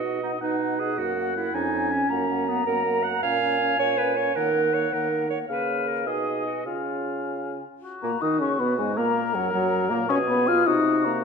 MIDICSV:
0, 0, Header, 1, 6, 480
1, 0, Start_track
1, 0, Tempo, 376176
1, 1248, Time_signature, 6, 3, 24, 8
1, 7004, Tempo, 390879
1, 9884, Tempo, 378549
1, 14204, End_track
2, 0, Start_track
2, 0, Title_t, "Flute"
2, 0, Program_c, 0, 73
2, 49, Note_on_c, 0, 78, 35
2, 283, Note_off_c, 0, 78, 0
2, 295, Note_on_c, 0, 78, 42
2, 521, Note_off_c, 0, 78, 0
2, 528, Note_on_c, 0, 78, 46
2, 762, Note_off_c, 0, 78, 0
2, 768, Note_on_c, 0, 78, 43
2, 997, Note_off_c, 0, 78, 0
2, 1004, Note_on_c, 0, 78, 41
2, 1242, Note_off_c, 0, 78, 0
2, 1252, Note_on_c, 0, 78, 44
2, 1486, Note_off_c, 0, 78, 0
2, 1496, Note_on_c, 0, 78, 47
2, 1722, Note_off_c, 0, 78, 0
2, 1730, Note_on_c, 0, 78, 44
2, 1965, Note_off_c, 0, 78, 0
2, 1972, Note_on_c, 0, 80, 46
2, 2205, Note_off_c, 0, 80, 0
2, 2211, Note_on_c, 0, 80, 47
2, 2444, Note_off_c, 0, 80, 0
2, 2452, Note_on_c, 0, 80, 50
2, 2684, Note_off_c, 0, 80, 0
2, 2696, Note_on_c, 0, 78, 49
2, 2918, Note_off_c, 0, 78, 0
2, 2926, Note_on_c, 0, 78, 44
2, 3162, Note_off_c, 0, 78, 0
2, 3168, Note_on_c, 0, 78, 54
2, 3392, Note_off_c, 0, 78, 0
2, 3399, Note_on_c, 0, 78, 51
2, 3635, Note_off_c, 0, 78, 0
2, 3642, Note_on_c, 0, 78, 57
2, 3880, Note_off_c, 0, 78, 0
2, 3890, Note_on_c, 0, 78, 52
2, 4115, Note_off_c, 0, 78, 0
2, 4123, Note_on_c, 0, 77, 58
2, 4358, Note_off_c, 0, 77, 0
2, 4367, Note_on_c, 0, 77, 46
2, 4599, Note_off_c, 0, 77, 0
2, 4608, Note_on_c, 0, 77, 53
2, 4834, Note_off_c, 0, 77, 0
2, 4841, Note_on_c, 0, 77, 55
2, 5078, Note_off_c, 0, 77, 0
2, 5088, Note_on_c, 0, 77, 52
2, 5320, Note_off_c, 0, 77, 0
2, 5328, Note_on_c, 0, 77, 50
2, 5557, Note_off_c, 0, 77, 0
2, 5565, Note_on_c, 0, 78, 49
2, 5799, Note_off_c, 0, 78, 0
2, 5807, Note_on_c, 0, 78, 43
2, 6043, Note_off_c, 0, 78, 0
2, 6051, Note_on_c, 0, 78, 48
2, 6284, Note_off_c, 0, 78, 0
2, 6291, Note_on_c, 0, 78, 46
2, 6520, Note_off_c, 0, 78, 0
2, 6527, Note_on_c, 0, 78, 47
2, 6761, Note_off_c, 0, 78, 0
2, 6774, Note_on_c, 0, 78, 43
2, 7005, Note_off_c, 0, 78, 0
2, 7015, Note_on_c, 0, 77, 49
2, 7431, Note_off_c, 0, 77, 0
2, 7717, Note_on_c, 0, 80, 40
2, 8423, Note_off_c, 0, 80, 0
2, 8443, Note_on_c, 0, 80, 36
2, 9629, Note_off_c, 0, 80, 0
2, 10130, Note_on_c, 0, 82, 58
2, 10366, Note_on_c, 0, 87, 57
2, 10385, Note_off_c, 0, 82, 0
2, 10605, Note_off_c, 0, 87, 0
2, 10613, Note_on_c, 0, 85, 51
2, 10852, Note_on_c, 0, 83, 56
2, 10872, Note_off_c, 0, 85, 0
2, 11074, Note_off_c, 0, 83, 0
2, 11081, Note_on_c, 0, 80, 55
2, 11310, Note_off_c, 0, 80, 0
2, 11318, Note_on_c, 0, 82, 61
2, 11805, Note_on_c, 0, 78, 66
2, 11824, Note_off_c, 0, 82, 0
2, 12025, Note_off_c, 0, 78, 0
2, 12032, Note_on_c, 0, 78, 57
2, 12496, Note_off_c, 0, 78, 0
2, 12507, Note_on_c, 0, 82, 63
2, 12583, Note_off_c, 0, 82, 0
2, 12741, Note_on_c, 0, 85, 79
2, 12817, Note_off_c, 0, 85, 0
2, 12981, Note_on_c, 0, 83, 69
2, 13230, Note_on_c, 0, 89, 76
2, 13249, Note_off_c, 0, 83, 0
2, 13473, Note_on_c, 0, 87, 66
2, 13492, Note_off_c, 0, 89, 0
2, 13957, Note_on_c, 0, 82, 62
2, 13976, Note_off_c, 0, 87, 0
2, 14204, Note_off_c, 0, 82, 0
2, 14204, End_track
3, 0, Start_track
3, 0, Title_t, "Oboe"
3, 0, Program_c, 1, 68
3, 0, Note_on_c, 1, 75, 49
3, 511, Note_off_c, 1, 75, 0
3, 522, Note_on_c, 1, 78, 55
3, 1970, Note_on_c, 1, 80, 69
3, 1989, Note_off_c, 1, 78, 0
3, 2676, Note_on_c, 1, 82, 70
3, 2695, Note_off_c, 1, 80, 0
3, 4111, Note_off_c, 1, 82, 0
3, 4119, Note_on_c, 1, 80, 70
3, 5535, Note_off_c, 1, 80, 0
3, 5554, Note_on_c, 1, 78, 62
3, 6624, Note_off_c, 1, 78, 0
3, 7005, Note_on_c, 1, 77, 60
3, 7713, Note_on_c, 1, 75, 49
3, 7732, Note_off_c, 1, 77, 0
3, 8431, Note_off_c, 1, 75, 0
3, 8438, Note_on_c, 1, 77, 39
3, 9509, Note_off_c, 1, 77, 0
3, 9882, Note_on_c, 1, 66, 60
3, 11321, Note_on_c, 1, 70, 69
3, 11340, Note_off_c, 1, 66, 0
3, 12743, Note_on_c, 1, 68, 73
3, 12762, Note_off_c, 1, 70, 0
3, 13467, Note_off_c, 1, 68, 0
3, 13477, Note_on_c, 1, 66, 66
3, 14204, Note_off_c, 1, 66, 0
3, 14204, End_track
4, 0, Start_track
4, 0, Title_t, "Clarinet"
4, 0, Program_c, 2, 71
4, 0, Note_on_c, 2, 66, 59
4, 274, Note_off_c, 2, 66, 0
4, 289, Note_on_c, 2, 63, 50
4, 396, Note_off_c, 2, 63, 0
4, 529, Note_on_c, 2, 63, 68
4, 1013, Note_on_c, 2, 68, 64
4, 1032, Note_off_c, 2, 63, 0
4, 1255, Note_on_c, 2, 66, 61
4, 1274, Note_off_c, 2, 68, 0
4, 1727, Note_off_c, 2, 66, 0
4, 1734, Note_on_c, 2, 64, 66
4, 1971, Note_on_c, 2, 63, 79
4, 1990, Note_off_c, 2, 64, 0
4, 2446, Note_on_c, 2, 61, 73
4, 2465, Note_off_c, 2, 63, 0
4, 3166, Note_on_c, 2, 59, 69
4, 3185, Note_off_c, 2, 61, 0
4, 3397, Note_off_c, 2, 59, 0
4, 3405, Note_on_c, 2, 70, 80
4, 3872, Note_on_c, 2, 78, 75
4, 3892, Note_off_c, 2, 70, 0
4, 4112, Note_off_c, 2, 78, 0
4, 4120, Note_on_c, 2, 77, 94
4, 4824, Note_off_c, 2, 77, 0
4, 4838, Note_on_c, 2, 73, 94
4, 5077, Note_on_c, 2, 71, 81
4, 5097, Note_off_c, 2, 73, 0
4, 5314, Note_on_c, 2, 73, 74
4, 5333, Note_off_c, 2, 71, 0
4, 5561, Note_on_c, 2, 70, 83
4, 5580, Note_off_c, 2, 73, 0
4, 6045, Note_on_c, 2, 73, 70
4, 6064, Note_off_c, 2, 70, 0
4, 6290, Note_on_c, 2, 70, 67
4, 6309, Note_off_c, 2, 73, 0
4, 6757, Note_off_c, 2, 70, 0
4, 6765, Note_on_c, 2, 73, 64
4, 6873, Note_off_c, 2, 73, 0
4, 7004, Note_on_c, 2, 71, 57
4, 7474, Note_on_c, 2, 70, 58
4, 7492, Note_off_c, 2, 71, 0
4, 7705, Note_off_c, 2, 70, 0
4, 7712, Note_on_c, 2, 68, 64
4, 8184, Note_off_c, 2, 68, 0
4, 8193, Note_on_c, 2, 66, 49
4, 8430, Note_off_c, 2, 66, 0
4, 8436, Note_on_c, 2, 65, 47
4, 9626, Note_off_c, 2, 65, 0
4, 10131, Note_on_c, 2, 58, 61
4, 10239, Note_off_c, 2, 58, 0
4, 10373, Note_on_c, 2, 63, 56
4, 10604, Note_off_c, 2, 63, 0
4, 10612, Note_on_c, 2, 61, 55
4, 10719, Note_off_c, 2, 61, 0
4, 10853, Note_on_c, 2, 59, 63
4, 11083, Note_off_c, 2, 59, 0
4, 11089, Note_on_c, 2, 56, 60
4, 11320, Note_off_c, 2, 56, 0
4, 11326, Note_on_c, 2, 58, 68
4, 11799, Note_on_c, 2, 54, 61
4, 11818, Note_off_c, 2, 58, 0
4, 12028, Note_off_c, 2, 54, 0
4, 12036, Note_on_c, 2, 54, 76
4, 12498, Note_off_c, 2, 54, 0
4, 12507, Note_on_c, 2, 58, 65
4, 12614, Note_off_c, 2, 58, 0
4, 12743, Note_on_c, 2, 68, 63
4, 13476, Note_on_c, 2, 66, 61
4, 13495, Note_off_c, 2, 68, 0
4, 14204, Note_off_c, 2, 66, 0
4, 14204, End_track
5, 0, Start_track
5, 0, Title_t, "French horn"
5, 0, Program_c, 3, 60
5, 44, Note_on_c, 3, 63, 38
5, 275, Note_off_c, 3, 63, 0
5, 282, Note_on_c, 3, 63, 38
5, 519, Note_off_c, 3, 63, 0
5, 528, Note_on_c, 3, 63, 41
5, 755, Note_off_c, 3, 63, 0
5, 763, Note_on_c, 3, 63, 43
5, 1000, Note_off_c, 3, 63, 0
5, 1009, Note_on_c, 3, 63, 41
5, 1244, Note_off_c, 3, 63, 0
5, 1250, Note_on_c, 3, 58, 45
5, 1478, Note_off_c, 3, 58, 0
5, 1485, Note_on_c, 3, 58, 45
5, 1723, Note_off_c, 3, 58, 0
5, 1729, Note_on_c, 3, 58, 43
5, 1959, Note_off_c, 3, 58, 0
5, 1967, Note_on_c, 3, 61, 54
5, 2199, Note_off_c, 3, 61, 0
5, 2206, Note_on_c, 3, 61, 48
5, 2442, Note_off_c, 3, 61, 0
5, 2452, Note_on_c, 3, 61, 49
5, 2671, Note_off_c, 3, 61, 0
5, 2678, Note_on_c, 3, 58, 54
5, 2913, Note_off_c, 3, 58, 0
5, 2921, Note_on_c, 3, 58, 52
5, 3156, Note_off_c, 3, 58, 0
5, 3164, Note_on_c, 3, 58, 53
5, 3392, Note_off_c, 3, 58, 0
5, 3400, Note_on_c, 3, 58, 54
5, 3638, Note_off_c, 3, 58, 0
5, 3645, Note_on_c, 3, 58, 52
5, 3881, Note_off_c, 3, 58, 0
5, 3888, Note_on_c, 3, 58, 46
5, 4118, Note_off_c, 3, 58, 0
5, 4125, Note_on_c, 3, 61, 50
5, 4352, Note_off_c, 3, 61, 0
5, 4359, Note_on_c, 3, 61, 54
5, 4595, Note_off_c, 3, 61, 0
5, 4600, Note_on_c, 3, 61, 52
5, 4829, Note_off_c, 3, 61, 0
5, 4837, Note_on_c, 3, 61, 49
5, 5070, Note_off_c, 3, 61, 0
5, 5078, Note_on_c, 3, 61, 49
5, 5313, Note_off_c, 3, 61, 0
5, 5320, Note_on_c, 3, 61, 47
5, 5553, Note_off_c, 3, 61, 0
5, 5561, Note_on_c, 3, 58, 51
5, 5793, Note_off_c, 3, 58, 0
5, 5800, Note_on_c, 3, 58, 46
5, 6030, Note_off_c, 3, 58, 0
5, 6037, Note_on_c, 3, 58, 46
5, 6273, Note_off_c, 3, 58, 0
5, 6280, Note_on_c, 3, 58, 50
5, 6518, Note_off_c, 3, 58, 0
5, 6523, Note_on_c, 3, 58, 44
5, 6751, Note_off_c, 3, 58, 0
5, 6759, Note_on_c, 3, 58, 43
5, 6997, Note_off_c, 3, 58, 0
5, 7006, Note_on_c, 3, 58, 47
5, 7711, Note_on_c, 3, 63, 45
5, 7730, Note_off_c, 3, 58, 0
5, 8231, Note_off_c, 3, 63, 0
5, 8440, Note_on_c, 3, 61, 37
5, 9628, Note_off_c, 3, 61, 0
5, 10125, Note_on_c, 3, 58, 65
5, 10350, Note_off_c, 3, 58, 0
5, 10358, Note_on_c, 3, 63, 68
5, 10597, Note_on_c, 3, 61, 66
5, 10616, Note_off_c, 3, 63, 0
5, 10841, Note_on_c, 3, 59, 63
5, 10860, Note_off_c, 3, 61, 0
5, 11074, Note_off_c, 3, 59, 0
5, 11081, Note_on_c, 3, 56, 66
5, 11320, Note_on_c, 3, 58, 74
5, 11339, Note_off_c, 3, 56, 0
5, 11801, Note_on_c, 3, 54, 70
5, 11820, Note_off_c, 3, 58, 0
5, 12036, Note_off_c, 3, 54, 0
5, 12042, Note_on_c, 3, 54, 73
5, 12507, Note_on_c, 3, 58, 79
5, 12526, Note_off_c, 3, 54, 0
5, 12745, Note_off_c, 3, 58, 0
5, 12751, Note_on_c, 3, 61, 86
5, 12857, Note_off_c, 3, 61, 0
5, 12995, Note_on_c, 3, 59, 80
5, 13237, Note_on_c, 3, 65, 84
5, 13256, Note_off_c, 3, 59, 0
5, 13477, Note_on_c, 3, 63, 76
5, 13496, Note_off_c, 3, 65, 0
5, 13966, Note_on_c, 3, 58, 65
5, 13985, Note_off_c, 3, 63, 0
5, 14204, Note_off_c, 3, 58, 0
5, 14204, End_track
6, 0, Start_track
6, 0, Title_t, "Bassoon"
6, 0, Program_c, 4, 70
6, 0, Note_on_c, 4, 47, 47
6, 442, Note_off_c, 4, 47, 0
6, 529, Note_on_c, 4, 47, 50
6, 1164, Note_off_c, 4, 47, 0
6, 1246, Note_on_c, 4, 42, 58
6, 1884, Note_off_c, 4, 42, 0
6, 1973, Note_on_c, 4, 41, 62
6, 2604, Note_off_c, 4, 41, 0
6, 2688, Note_on_c, 4, 42, 61
6, 3322, Note_off_c, 4, 42, 0
6, 3405, Note_on_c, 4, 42, 63
6, 4041, Note_off_c, 4, 42, 0
6, 4121, Note_on_c, 4, 46, 62
6, 4754, Note_off_c, 4, 46, 0
6, 4841, Note_on_c, 4, 46, 64
6, 5482, Note_off_c, 4, 46, 0
6, 5569, Note_on_c, 4, 51, 65
6, 6204, Note_off_c, 4, 51, 0
6, 6295, Note_on_c, 4, 51, 57
6, 6822, Note_off_c, 4, 51, 0
6, 7010, Note_on_c, 4, 49, 50
6, 7712, Note_on_c, 4, 47, 43
6, 7731, Note_off_c, 4, 49, 0
6, 8439, Note_on_c, 4, 49, 36
6, 8458, Note_off_c, 4, 47, 0
6, 9651, Note_off_c, 4, 49, 0
6, 10132, Note_on_c, 4, 46, 56
6, 10240, Note_off_c, 4, 46, 0
6, 10374, Note_on_c, 4, 51, 64
6, 10614, Note_on_c, 4, 49, 54
6, 10633, Note_off_c, 4, 51, 0
6, 10850, Note_off_c, 4, 49, 0
6, 10858, Note_on_c, 4, 47, 60
6, 11102, Note_on_c, 4, 44, 60
6, 11121, Note_off_c, 4, 47, 0
6, 11327, Note_off_c, 4, 44, 0
6, 11334, Note_on_c, 4, 46, 63
6, 11802, Note_on_c, 4, 42, 62
6, 11821, Note_off_c, 4, 46, 0
6, 12032, Note_off_c, 4, 42, 0
6, 12040, Note_on_c, 4, 42, 59
6, 12500, Note_off_c, 4, 42, 0
6, 12511, Note_on_c, 4, 46, 76
6, 12742, Note_off_c, 4, 46, 0
6, 12750, Note_on_c, 4, 47, 62
6, 13420, Note_off_c, 4, 47, 0
6, 13472, Note_on_c, 4, 48, 55
6, 14204, Note_off_c, 4, 48, 0
6, 14204, End_track
0, 0, End_of_file